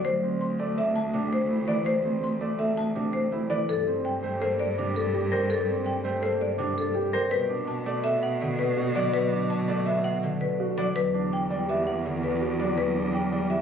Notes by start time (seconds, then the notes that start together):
Already playing: D5
0.05 D2 C5
0.23 C4
0.41 C6
0.59 A3 D5
0.77 C4 A4 E5
0.96 A5
1.13 C3 D4
1.33 C5
1.50 A3 E4
1.68 E3 D5
1.86 C5
2.04 C4
2.24 C6
2.41 A3 D5
2.59 C4 A4 E5
2.77 A5
2.95 C3 D4
3.13 C5
3.32 A3 E4
3.50 E3 D5
3.69 G2 A4
3.87 C4
4.05 G5
4.23 A3 C5
4.41 A#3 A4 C5
4.59 D5
4.78 C3 D4
4.96 A4
5.14 G4
5.32 G3 A#4 C5
5.50 A4
5.68 C4
5.86 G5
6.04 A3 C5
6.22 A#3 A4 C5
6.41 D5
6.58 C3 D4
6.78 A4
6.95 G4
7.13 G3 A#4 C5
7.31 B2 B4
7.49 D4
7.68 A5
7.86 A3 D5
8.04 B3 A4 E5
8.23 F#5
8.41 D3
8.59 B4
8.77 F#4
8.95 F#3 D5
9.14 B4
9.32 D4
9.50 A5
9.68 A3 D5
9.86 B3 A4 E5
10.04 F#5
10.23 D3
10.41 B4
10.60 F#4
10.78 F#3 D5
10.96 E2 B4
11.14 D4
11.33 G5
11.50 G3 D5
11.69 B3 G4 E5
11.87 F#5
12.05 D3
12.24 B4
12.41 F#4
12.59 F#3 D5
12.78 B4
12.96 D4
13.14 G5
13.32 G3 D5
13.50 B3 G4 E5